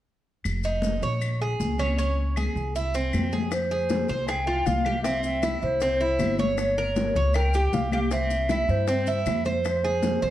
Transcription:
0.44 upright bass F1, high conga, claves, maracas
0.63 cuban tres D#4, high conga, maracas
0.82 high conga, maracas
1.02 upright bass A#1, cuban tres C#5, high conga, maracas
1.21 high conga, claves, maracas
1.41 cuban tres G#4, high conga
1.60 upright bass C#2, high conga, maracas
1.78 cuban tres C#4, high conga, claves, maracas
1.98 cuban tres C#4, high conga, maracas
2.18 high conga
2.36 cuban tres G#4, high conga, claves, maracas
2.55 upright bass C2, maracas
2.75 cuban tres E4, high conga, maracas
2.94 cuban tres C4, high conga, maracas
3.13 upright bass F2, high conga, claves, maracas
3.32 cuban tres G#4, high conga, maracas
3.52 recorder C5, high bongo, high conga, claves, maracas
3.71 cuban tres G#4, high bongo, high conga
3.89 high bongo, high conga, maracas
4.08 upright bass C2, cuban tres C5, high conga, maracas
4.28 cuban tres G#4, recorder G5, high bongo, high conga, claves, maracas
4.47 cuban tres F4, high bongo, high conga
4.66 upright bass C2, recorder F5, high bongo, low bongo, high conga, maracas
4.85 cuban tres G4, high bongo, high conga, claves, maracas
5.03 cuban tres C4, recorder E5, high bongo, high conga, maracas
5.24 recorder E5, high bongo, high conga, maracas
5.43 cuban tres E4, high bongo, high conga, claves, maracas
5.62 upright bass C2, recorder C5, maracas
5.80 cuban tres C4, high bongo, high conga, maracas
6.00 cuban tres E4, high bongo, high conga
6.19 upright bass G1, high bongo, low bongo, high conga, claves, maracas
6.39 cuban tres C#5, high bongo, high conga, maracas
6.58 recorder C#5, high bongo, high conga, claves, maracas
6.78 cuban tres A#4, high bongo, high conga
6.96 high bongo, high conga, maracas
7.15 upright bass C#2, cuban tres C#5, high conga, maracas
7.34 cuban tres A#4, recorder G5, high bongo, high conga, claves, maracas
7.54 cuban tres G4, high bongo, high conga, maracas
7.73 upright bass C2, recorder F5, high bongo, low bongo, high conga, maracas
7.92 cuban tres G4, recorder F5, high bongo, high conga, claves, maracas
8.11 cuban tres C4, recorder E5, high bongo, high conga, maracas
8.30 high bongo, high conga, maracas
8.49 cuban tres E4, high bongo, high conga, claves, maracas
8.69 upright bass G2, recorder C5, maracas
8.87 cuban tres C4, high bongo, high conga, maracas
9.06 cuban tres E4, high bongo, high conga, maracas
9.26 upright bass F2, high bongo, low bongo, high conga, claves, maracas
9.45 cuban tres C5, high bongo, high conga, maracas
9.64 recorder C5, high bongo, high conga, claves, maracas
9.84 cuban tres G#4, high bongo, high conga
10.03 high bongo, high conga, maracas
10.22 upright bass C2, cuban tres C5, high conga, maracas

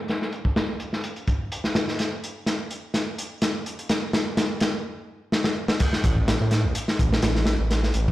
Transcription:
0.08 snare, closed hi-hat
0.22 snare
0.32 closed hi-hat
0.45 kick
0.56 snare, closed hi-hat
0.80 closed hi-hat
0.93 snare
1.04 closed hi-hat
1.16 closed hi-hat
1.27 kick, closed hi-hat
1.52 closed hi-hat
1.64 snare
1.75 snare, closed hi-hat
1.88 snare
1.99 snare, closed hi-hat
2.24 closed hi-hat
2.46 snare, closed hi-hat
2.71 closed hi-hat
2.94 snare, closed hi-hat
3.18 closed hi-hat
3.42 snare, closed hi-hat
3.66 closed hi-hat
3.79 closed hi-hat
3.89 snare, closed hi-hat
4.13 snare, closed hi-hat
4.37 snare, closed hi-hat
4.60 snare, closed hi-hat
5.32 snare
5.44 snare
5.68 snare
5.80 kick, closed hi-hat, crash
5.93 snare
6.04 detuned saw bass A1, kick, closed hi-hat
6.17 kick
6.28 snare, closed hi-hat
6.41 detuned saw bass A2
6.51 snare, closed hi-hat
6.64 detuned saw bass A1
6.75 closed hi-hat
6.88 snare
6.99 detuned saw bass A1, kick, closed hi-hat
7.13 snare
7.22 detuned saw bass A1, snare, closed hi-hat
7.35 snare
7.46 snare, closed hi-hat
7.60 detuned saw bass A1
7.71 snare, closed hi-hat
7.83 snare
7.94 detuned saw bass A1, closed hi-hat
8.08 kick

